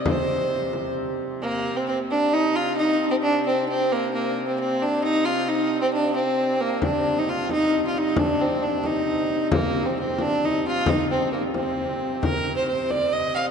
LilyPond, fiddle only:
\new Staff \with { instrumentName = "Fiddle" } { \time 6/8 \key c \minor \tempo 4. = 89 c''2 r4 | bes8. c'16 c'8 d'8 ees'8 f'8 | ees'8. c'16 d'8 c'8 c'8 bes8 | bes8. c'16 c'8 d'8 ees'8 f'8 |
ees'8. c'16 d'8 c'4 bes8 | d'8. ees'16 f'8 ees'8. f'16 ees'8 | d'8 c'8 d'8 ees'4. | bes8. c'16 c'8 d'8 ees'8 f'8 |
ees'8 c'8 bes8 c'4. | bes'8. c''16 c''8 d''8 ees''8 f''8 | }